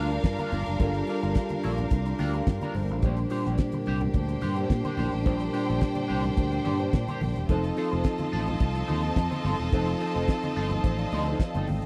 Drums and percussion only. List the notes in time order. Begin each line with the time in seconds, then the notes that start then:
0.10 closed hi-hat
0.24 kick, snare, closed hi-hat, muted conga
0.38 closed hi-hat, high conga
0.52 open hi-hat, high conga, low conga
0.66 closed hi-hat
0.80 kick, closed hi-hat, muted conga, low conga
0.94 closed hi-hat
1.07 open hi-hat, muted conga
1.23 closed hi-hat
1.35 kick, snare, closed hi-hat
1.49 closed hi-hat, high conga
1.63 open hi-hat, muted conga
1.78 closed hi-hat, low conga
1.91 kick, closed hi-hat, muted conga
2.06 closed hi-hat
2.19 open hi-hat, high conga
2.34 closed hi-hat
2.47 kick, snare, closed hi-hat, muted conga
2.61 closed hi-hat, high conga
2.75 open hi-hat, high conga, low conga
2.89 closed hi-hat
3.02 kick, closed hi-hat, low conga
3.17 closed hi-hat
3.30 open hi-hat, muted conga
3.46 closed hi-hat
3.58 kick, snare, closed hi-hat
3.72 closed hi-hat, high conga
3.86 open hi-hat, muted conga
4.01 closed hi-hat, low conga
4.14 kick, closed hi-hat, muted conga
4.28 closed hi-hat
4.41 open hi-hat, muted conga, high conga
4.56 closed hi-hat
4.70 kick, snare, closed hi-hat, muted conga
4.85 closed hi-hat, high conga
4.97 open hi-hat, muted conga, high conga, low conga
5.13 closed hi-hat
5.26 kick, closed hi-hat, low conga
5.40 closed hi-hat
5.53 open hi-hat, muted conga
5.70 closed hi-hat
5.81 kick, snare, closed hi-hat, muted conga
5.95 closed hi-hat, high conga
6.09 open hi-hat, muted conga
6.24 closed hi-hat, low conga
6.37 kick, closed hi-hat, muted conga
6.52 closed hi-hat
6.65 open hi-hat, muted conga, high conga
6.80 closed hi-hat
6.93 kick, snare, closed hi-hat, muted conga
7.08 closed hi-hat, high conga
7.21 open hi-hat, muted conga, high conga, low conga
7.36 closed hi-hat
7.49 kick, closed hi-hat, muted conga, low conga
7.64 closed hi-hat
7.77 open hi-hat, muted conga
7.93 closed hi-hat
8.04 kick, snare, closed hi-hat, muted conga
8.18 closed hi-hat, high conga
8.33 open hi-hat
8.47 closed hi-hat, low conga
8.60 kick, closed hi-hat
8.75 closed hi-hat
8.88 open hi-hat, high conga
9.03 closed hi-hat
9.16 kick, snare, closed hi-hat
9.32 closed hi-hat, high conga
9.45 open hi-hat, muted conga, high conga, low conga
9.59 closed hi-hat
9.72 kick, closed hi-hat, muted conga, low conga
9.87 closed hi-hat
10.00 open hi-hat, muted conga
10.16 closed hi-hat
10.28 kick, snare, closed hi-hat
10.43 closed hi-hat, high conga
10.56 open hi-hat, muted conga
10.71 closed hi-hat, low conga
10.84 kick, closed hi-hat, muted conga
10.98 closed hi-hat
11.12 open hi-hat, muted conga, high conga
11.26 closed hi-hat
11.40 kick, snare, closed hi-hat, muted conga
11.55 closed hi-hat, high conga
11.67 open hi-hat, muted conga, high conga, low conga
11.82 closed hi-hat